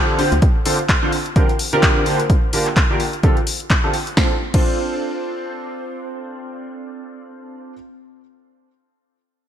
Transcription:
0.00 0.16 D3 loud
0.00 0.16 C4 medium
0.00 0.16 D4 medium
0.00 0.16 F4 medium
0.00 0.16 G4 medium
0.00 0.16 A4 loud
0.19 0.30 D3 medium
0.19 0.30 C4 medium
0.19 0.30 D4 medium
0.19 0.30 F4 medium
0.19 0.30 G4 medium
0.19 0.30 C5 medium
0.19 open hi-hat medium
0.32 0.41 D2 loud
0.32 closed hi-hat medium
0.42 kick loud
0.42 closed hi-hat medium
0.66 0.77 D3 medium
0.66 0.77 C4 medium
0.66 0.77 D4 medium
0.66 0.77 F4 medium
0.66 0.77 A4 medium
0.66 0.77 C5 medium
0.66 open hi-hat loud
0.79 closed hi-hat soft
0.89 kick loud
0.89 clap loud
0.89 closed hi-hat medium
1.02 1.11 D3 medium
1.02 1.11 C4 medium
1.02 1.11 D4 medium
1.02 1.11 F4 medium
1.02 1.11 A4 medium
1.02 1.11 C5 medium
1.12 open hi-hat medium
1.26 closed hi-hat soft
1.36 1.47 D3 medium
1.36 1.47 C4 medium
1.36 1.47 D4 medium
1.36 1.47 F4 medium
1.36 1.47 G4 medium
1.36 1.47 A#4 medium
1.36 kick loud
1.36 closed hi-hat medium
1.49 closed hi-hat soft
1.59 open hi-hat loud
1.73 2.04 D3 loud
1.73 2.04 C4 medium
1.73 2.04 D4 medium
1.73 2.04 F4 medium
1.73 2.04 G4 medium
1.73 2.04 A#4 loud
1.73 closed hi-hat soft
1.83 kick loud
1.83 clap loud
1.83 closed hi-hat medium
2.06 2.18 D3 medium
2.06 2.18 A#3 medium
2.06 2.18 D4 medium
2.06 2.18 F4 medium
2.06 2.18 G4 medium
2.06 2.18 C5 medium
2.06 open hi-hat medium
2.20 closed hi-hat medium
2.30 kick loud
2.30 closed hi-hat medium
2.53 2.64 D3 medium
2.53 2.64 A#3 medium
2.53 2.64 D4 medium
2.53 2.64 F4 medium
2.53 2.64 G4 medium
2.53 2.64 A#4 medium
2.53 open hi-hat loud
2.67 clap soft
2.76 kick loud
2.76 clap loud
2.76 closed hi-hat medium
2.90 2.99 D3 medium
2.90 2.99 A#3 medium
2.90 2.99 D4 medium
2.90 2.99 F4 medium
2.90 2.98 G4 medium
2.90 2.99 A#4 medium
3.00 open hi-hat medium
3.13 closed hi-hat soft
3.23 3.35 D3 medium
3.23 3.35 C4 medium
3.23 3.35 D4 medium
3.23 3.35 F4 medium
3.23 3.35 G4 medium
3.23 3.35 A4 medium
3.23 kick loud
3.23 closed hi-hat medium
3.37 closed hi-hat soft
3.47 open hi-hat loud
3.60 closed hi-hat soft
3.70 kick loud
3.70 clap loud
3.70 closed hi-hat medium
3.84 3.92 D3 medium
3.84 3.92 C4 medium
3.84 3.92 D4 medium
3.84 3.92 F4 medium
3.84 3.92 G4 medium
3.84 3.92 A4 medium
3.94 open hi-hat medium
4.07 closed hi-hat medium
4.17 4.32 C4 medium
4.17 4.32 D4 medium
4.17 4.32 F4 medium
4.17 4.32 A4 medium
4.17 4.32 C5 medium
4.17 kick loud
4.17 snare medium
4.54 7.73 C4 medium
4.54 7.73 D4 medium
4.54 7.73 F4 medium
4.54 7.73 A4 medium
4.54 7.73 C5 medium
4.54 kick loud
4.54 crash medium

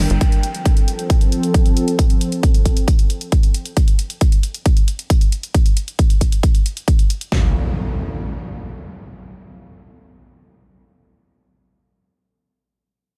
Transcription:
0.00 0.18 G3 medium
0.00 0.18 D4 medium
0.00 0.18 A#4 medium
0.00 3.73 G5 medium
0.10 0.18 G1 medium
0.10 closed hi-hat soft
0.21 3.73 F3 medium
0.21 3.73 C4 medium
0.21 3.73 A4 medium
0.21 kick loud
0.21 closed hi-hat medium
0.32 closed hi-hat soft
0.43 closed hi-hat medium
0.55 closed hi-hat soft
0.65 kick loud
0.65 closed hi-hat medium
0.77 closed hi-hat soft
0.88 closed hi-hat medium
0.99 closed hi-hat soft
1.10 kick loud
1.10 closed hi-hat medium
1.21 closed hi-hat soft
1.32 closed hi-hat medium
1.43 closed hi-hat soft
1.54 kick loud
1.54 closed hi-hat medium
1.66 closed hi-hat soft
1.77 closed hi-hat medium
1.88 closed hi-hat soft
1.99 kick loud
1.99 closed hi-hat medium
2.10 closed hi-hat soft
2.21 closed hi-hat medium
2.32 closed hi-hat soft
2.43 kick loud
2.43 closed hi-hat medium
2.54 closed hi-hat soft
2.65 kick medium
2.65 closed hi-hat medium
2.77 closed hi-hat medium
2.88 kick loud
2.88 closed hi-hat medium
2.99 closed hi-hat soft
3.10 closed hi-hat medium
3.21 closed hi-hat soft
3.32 kick loud
3.32 closed hi-hat medium
3.43 closed hi-hat soft
3.54 closed hi-hat medium
3.65 closed hi-hat soft
3.77 kick loud
3.77 closed hi-hat medium
3.88 closed hi-hat medium
3.99 closed hi-hat medium
4.10 closed hi-hat medium
4.21 kick loud
4.21 closed hi-hat medium
4.32 closed hi-hat medium
4.43 closed hi-hat medium
4.54 closed hi-hat soft
4.66 kick loud
4.66 closed hi-hat medium
4.77 closed hi-hat soft
4.88 closed hi-hat medium
4.99 closed hi-hat medium
5.10 kick loud
5.10 closed hi-hat medium
5.21 closed hi-hat medium
5.32 closed hi-hat medium
5.43 closed hi-hat medium
5.54 kick loud
5.54 closed hi-hat medium
5.66 closed hi-hat medium
5.77 closed hi-hat medium
5.88 closed hi-hat medium
5.99 kick loud
5.99 closed hi-hat medium
6.10 closed hi-hat medium
6.21 kick medium
6.21 closed hi-hat medium
6.32 closed hi-hat medium
6.43 kick loud
6.43 closed hi-hat medium
6.55 closed hi-hat medium
6.66 closed hi-hat medium
6.77 closed hi-hat medium
6.88 kick loud
6.88 closed hi-hat medium
6.99 closed hi-hat medium
7.10 closed hi-hat medium
7.21 closed hi-hat medium
7.32 kick loud
7.32 snare medium
7.32 impact medium

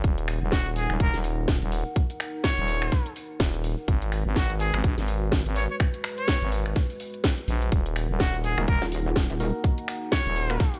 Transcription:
0.04 0.40 D#1 loud
0.04 3.84 D#4 medium
0.04 3.84 A#4 medium
0.04 3.84 F#5 medium
0.04 kick loud
0.04 closed hi-hat medium
0.18 closed hi-hat medium
0.28 finger snap medium
0.28 open hi-hat loud
0.42 0.88 D#1 loud
0.52 0.70 F#4 medium
0.52 kick loud
0.52 snare loud
0.52 closed hi-hat medium
0.66 closed hi-hat medium
0.76 0.94 G#4 medium
0.76 open hi-hat loud
0.90 0.98 D#1 loud
0.90 finger snap medium
0.90 closed hi-hat soft
1.00 1.12 E1 loud
1.00 1.18 A#4 loud
1.00 kick loud
1.00 closed hi-hat medium
1.14 1.60 D#1 loud
1.14 snare soft
1.14 closed hi-hat soft
1.24 open hi-hat loud
1.48 kick loud
1.48 snare loud
1.48 closed hi-hat medium
1.62 1.84 D#1 loud
1.62 closed hi-hat medium
1.72 open hi-hat loud
1.96 kick loud
1.96 closed hi-hat medium
2.10 closed hi-hat medium
2.20 finger snap medium
2.20 open hi-hat loud
2.44 3.12 C#5 loud
2.44 kick loud
2.44 snare loud
2.44 closed hi-hat medium
2.58 2.90 D#1 loud
2.58 closed hi-hat medium
2.68 open hi-hat loud
2.82 finger snap medium
2.82 closed hi-hat soft
2.92 kick loud
2.92 snare soft
2.92 closed hi-hat medium
3.06 closed hi-hat medium
3.16 open hi-hat loud
3.40 3.76 D#1 loud
3.40 kick loud
3.40 snare loud
3.40 closed hi-hat medium
3.54 closed hi-hat medium
3.64 open hi-hat loud
3.88 4.24 G#1 loud
3.88 7.68 G#3 medium
3.88 7.68 F#4 medium
3.88 7.68 B4 medium
3.88 kick loud
3.88 closed hi-hat medium
4.02 closed hi-hat medium
4.12 finger snap medium
4.12 open hi-hat loud
4.26 4.72 G#1 loud
4.36 4.54 F#4 medium
4.36 kick loud
4.36 snare loud
4.36 closed hi-hat medium
4.50 closed hi-hat medium
4.60 4.78 G#4 loud
4.60 open hi-hat loud
4.74 4.82 G#1 medium
4.74 finger snap medium
4.74 closed hi-hat soft
4.84 4.96 A#1 loud
4.84 kick loud
4.84 closed hi-hat medium
4.98 5.44 G#1 medium
4.98 snare soft
4.98 closed hi-hat medium
5.08 open hi-hat loud
5.32 kick loud
5.32 snare loud
5.32 closed hi-hat medium
5.46 5.68 G#1 loud
5.46 closed hi-hat medium
5.56 5.65 C#5 medium
5.56 open hi-hat loud
5.70 5.76 C#5 medium
5.80 finger snap medium
5.80 kick loud
5.80 closed hi-hat medium
5.94 closed hi-hat medium
6.04 finger snap medium
6.04 open hi-hat loud
6.18 6.52 C#5 loud
6.18 closed hi-hat soft
6.28 kick loud
6.28 snare loud
6.28 closed hi-hat medium
6.42 6.74 G#1 loud
6.42 closed hi-hat medium
6.52 open hi-hat loud
6.66 finger snap medium
6.66 closed hi-hat soft
6.76 kick loud
6.76 snare soft
6.76 closed hi-hat medium
6.90 open hi-hat medium
7.00 open hi-hat loud
7.14 closed hi-hat soft
7.24 kick loud
7.24 snare loud
7.24 closed hi-hat medium
7.38 closed hi-hat medium
7.48 7.70 A#1 loud
7.48 open hi-hat loud
7.62 closed hi-hat soft
7.72 8.08 D#1 loud
7.72 10.80 D#4 medium
7.72 9.62 A#4 medium
7.72 10.80 F#5 loud
7.72 kick loud
7.72 closed hi-hat medium
7.86 closed hi-hat medium
7.96 finger snap medium
7.96 open hi-hat loud
8.10 8.56 D#1 loud
8.20 8.38 F#4 medium
8.20 kick loud
8.20 snare loud
8.20 closed hi-hat medium
8.34 closed hi-hat medium
8.44 8.62 G#4 loud
8.44 open hi-hat loud
8.58 8.66 D#1 loud
8.58 8.66 A#3 loud
8.58 8.66 D#4 medium
8.58 8.66 F#4 medium
8.58 8.66 A#4 loud
8.58 finger snap medium
8.58 closed hi-hat soft
8.68 8.80 E1 loud
8.68 8.86 A#4 loud
8.68 kick loud
8.68 closed hi-hat medium
8.82 9.28 D#1 loud
8.82 snare soft
8.82 closed hi-hat medium
8.92 open hi-hat loud
9.16 kick loud
9.16 snare loud
9.16 closed hi-hat medium
9.30 9.52 D#1 loud
9.30 closed hi-hat medium
9.40 10.47 A#3 medium
9.40 10.47 D#4 medium
9.40 10.47 F#4 medium
9.40 10.47 A#4 medium
9.40 open hi-hat loud
9.64 10.80 G#4 medium
9.64 kick loud
9.64 closed hi-hat medium
9.78 closed hi-hat medium
9.88 finger snap medium
9.88 open hi-hat loud
10.12 10.80 C#5 loud
10.12 kick loud
10.12 snare loud
10.12 closed hi-hat medium
10.26 10.58 D#1 loud
10.26 closed hi-hat medium
10.36 open hi-hat loud
10.50 10.58 A#3 medium
10.50 10.58 D#4 medium
10.50 10.58 F#4 medium
10.50 10.58 A#4 medium
10.50 finger snap medium
10.50 closed hi-hat soft
10.60 kick loud
10.60 snare soft
10.60 closed hi-hat medium
10.74 closed hi-hat medium

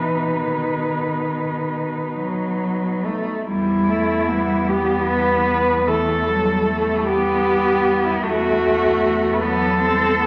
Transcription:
0.00 3.23 B2 soft
0.00 0.42 E3 soft
0.00 3.23 D#4 soft
0.00 3.01 B4 medium
0.40 2.17 D#3 soft
2.18 3.07 F#3 medium
3.05 3.47 A3 soft
3.46 8.20 E2 medium
3.46 3.89 G3 medium
3.46 3.90 G3 medium
3.46 4.69 E4 medium
3.87 4.29 A3 medium
3.87 4.31 A3 medium
4.27 4.71 G3 medium
4.27 4.69 B3 medium
4.68 5.89 G3 medium
4.68 5.88 B3 medium
4.68 5.07 G4 medium
5.08 5.89 B4 medium
5.87 6.26 E3 medium
5.87 6.30 A3 medium
5.87 7.05 A4 medium
6.27 6.66 F#3 medium
6.27 6.68 G3 medium
6.66 8.26 G3 medium
6.66 7.08 A3 medium
7.06 8.25 B3 medium
7.06 8.06 G4 medium
8.04 8.25 E4 medium
8.23 10.27 E2 medium
8.23 9.43 A3 medium
8.23 9.42 A3 medium
8.23 9.35 F#4 loud
9.34 9.41 B4 medium
9.40 9.80 F#3 medium
9.40 9.80 B3 medium
9.40 10.27 A4 loud
9.80 10.19 G3 medium
9.80 10.21 C4 medium
10.19 10.27 A3 medium
10.19 10.27 B3 medium

